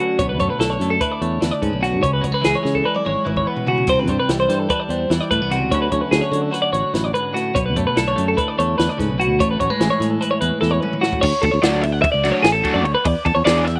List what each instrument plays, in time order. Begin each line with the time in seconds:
Already playing: clean electric guitar D3 F#3 C#4 F#4
0.00 clean electric guitar D2 F#4
0.19 fingered electric bass B1, clean electric guitar B2 C#5, kick, closed hi-hat
0.29 clean electric guitar B4
0.39 fingered electric bass F#2, clean electric guitar A3 C#5, kick, closed hi-hat
0.50 clean electric guitar B4
0.59 fingered electric bass B1, clean electric guitar D3 A4, snare, closed hi-hat
0.70 clean electric guitar C#5
0.80 fingered electric bass F#2, clean electric guitar A3, closed hi-hat
0.90 clean electric guitar A4
1.01 clean electric guitar E4 B4, kick, closed hi-hat
1.12 clean electric guitar D5
1.21 fingered electric bass E2, clean electric guitar A3 C#5, closed hi-hat
1.41 fingered electric bass E2, clean electric guitar D3 B4, snare, closed hi-hat
1.51 clean electric guitar D5
1.62 fingered electric bass G#2, clean electric guitar C#4 B4, kick, closed hi-hat
1.73 fingered electric bass B1
1.81 clean electric guitar B2 F#4, snare, closed hi-hat
1.94 fingered electric bass G#2
2.01 fingered electric bass C#2, clean electric guitar C#3 C#5, kick, closed hi-hat
2.14 clean electric guitar B4
2.21 fingered electric bass C#2, clean electric guitar F#3 C#5, kick, closed hi-hat
2.32 clean electric guitar G#3 B4
2.41 fingered electric bass C#2, clean electric guitar E3 G#4, snare, closed hi-hat
2.55 clean electric guitar C#5
2.63 fingered electric bass C#3, clean electric guitar G#3, snare
2.75 clean electric guitar A4, kick
2.84 clean electric guitar D4 B4
2.94 clean electric guitar E4 D5, mid tom
3.05 fingered electric bass G#1, clean electric guitar G#3 C#5, mid tom
3.25 fingered electric bass G#1, clean electric guitar E3 B4, mid tom
3.37 clean electric guitar C#5, kick
3.47 clean electric guitar B3 B4
3.56 floor tom
3.67 clean electric guitar C#3 F#4, floor tom
3.77 floor tom
3.87 fingered electric bass C2, clean electric guitar C3 C5, kick, closed hi-hat, crash
4.00 clean electric guitar B4
4.07 fingered electric bass G2, clean electric guitar G3 C5, kick, closed hi-hat
4.20 clean electric guitar B4
4.29 fingered electric bass C2, clean electric guitar E3 G4, snare, closed hi-hat
4.40 clean electric guitar C5
4.49 fingered electric bass G2, clean electric guitar G3, snare, closed hi-hat
4.60 clean electric guitar A4
4.69 clean electric guitar D4 B4, kick, closed hi-hat
4.80 clean electric guitar D5
4.89 fingered electric bass E2, clean electric guitar G3 C5, closed hi-hat
5.10 fingered electric bass E2, clean electric guitar E3 B4, snare, closed hi-hat
5.21 clean electric guitar D5
5.31 fingered electric bass A2, clean electric guitar A3 B4, kick, closed hi-hat
5.41 fingered electric bass C2, clean electric guitar B3
5.51 clean electric guitar C3 F#4, snare, closed hi-hat
5.60 fingered electric bass C#2
5.72 fingered electric bass D2, clean electric guitar D2 D3 F#3 C#4 E4 C#5, kick, closed hi-hat
5.82 clean electric guitar B4
5.92 fingered electric bass D2, clean electric guitar F#3 C#5, kick, closed hi-hat
6.01 clean electric guitar B4
6.11 fingered electric bass D2, clean electric guitar D3 G#4, snare, closed hi-hat
6.21 clean electric guitar C#5
6.31 fingered electric bass D3, clean electric guitar F#3, closed hi-hat
6.42 clean electric guitar A4
6.51 clean electric guitar F#4 B4, snare, closed hi-hat
6.62 clean electric guitar D5
6.72 fingered electric bass A1, clean electric guitar F#3 C#5, closed hi-hat
6.94 fingered electric bass A1, clean electric guitar F#2 B4, snare, closed hi-hat
7.04 clean electric guitar D5
7.13 clean electric guitar G#2 B4, closed hi-hat
7.34 clean electric guitar A2 F#4, snare, closed hi-hat
7.54 fingered electric bass B1, clean electric guitar B2 C#5, kick, closed hi-hat
7.66 clean electric guitar B4
7.76 fingered electric bass F#2, clean electric guitar A3 C#5, kick, closed hi-hat
7.87 clean electric guitar B4
7.96 fingered electric bass B1, clean electric guitar D3 A4, snare, closed hi-hat
8.08 clean electric guitar C#5
8.16 fingered electric bass F#2, clean electric guitar A3, closed hi-hat
8.28 clean electric guitar A4
8.37 clean electric guitar E4 B4, kick, closed hi-hat
8.48 clean electric guitar D5
8.58 fingered electric bass E2, clean electric guitar A3 C#5, closed hi-hat
8.78 fingered electric bass E2, clean electric guitar D3 B4, snare, closed hi-hat
8.89 clean electric guitar D5
8.98 fingered electric bass G#2, clean electric guitar C#3 B4, kick, snare, closed hi-hat
9.09 fingered electric bass B1
9.18 clean electric guitar B2 F#4, closed hi-hat
9.29 fingered electric bass D2
9.39 fingered electric bass A1, clean electric guitar A2 C#5, kick, closed hi-hat
9.51 clean electric guitar B4
9.60 fingered electric bass A1, clean electric guitar F#3 C#5, kick, closed hi-hat
9.70 clean electric guitar G#3 B4
9.80 fingered electric bass A1, clean electric guitar E3 G#4, snare, closed hi-hat
9.90 clean electric guitar C#5
10.00 fingered electric bass A2, clean electric guitar G#3, snare, closed hi-hat
10.10 clean electric guitar A4
10.21 clean electric guitar E4 B4, closed hi-hat
10.31 clean electric guitar C#5
10.41 fingered electric bass E2, clean electric guitar G#3 B4, closed hi-hat
10.61 fingered electric bass E2, clean electric guitar E3 A4, snare
10.71 clean electric guitar C#5
10.81 clean electric guitar C#4 B4, mid tom
10.93 mid tom
11.01 clean electric guitar A2 F#4, snare
11.13 kick
11.21 fingered electric bass D2, clean electric guitar C#5, muted overdriven electric guitar stroke, kick, crash
11.42 fingered electric bass D2, clean electric guitar A4, muted overdriven electric guitar stroke, kick, ride
11.51 fingered electric bass D2, clean electric guitar C#5
11.62 fingered electric bass D2, overdriven electric guitar F#3 A3 D4 F#4, clean electric guitar D5, snare, ride
11.82 clean electric guitar E5, muted overdriven electric guitar stroke, ride
11.92 clean electric guitar F#5
12.02 clean electric guitar E5, muted overdriven electric guitar stroke, kick, ride
12.12 fingered electric bass C#2, clean electric guitar D5
12.24 overdriven electric guitar F#3 A3 D4 F#4, snare, ride
12.32 clean electric guitar C#5
12.43 fingered electric bass A1, clean electric guitar G#4, muted overdriven electric guitar stroke, snare, ride
12.52 clean electric guitar A4
12.64 overdriven electric guitar F#3 A3 D4 F#4, kick, ride
12.74 fingered electric bass F#2, clean electric guitar D5
12.84 fingered electric bass D2, clean electric guitar C#5, muted overdriven electric guitar stroke, ride
12.95 clean electric guitar B4
13.05 fingered electric bass E2, clean electric guitar D5, muted overdriven electric guitar stroke, kick, ride
13.25 fingered electric bass E2, clean electric guitar A4, muted overdriven electric guitar stroke, kick, ride
13.35 fingered electric bass E2, clean electric guitar C#5
13.45 fingered electric bass E2, overdriven electric guitar E3 B3 D4 G#4, clean electric guitar D5, snare, ride
13.65 clean electric guitar E5, muted overdriven electric guitar stroke, snare, ride
13.76 clean electric guitar F#5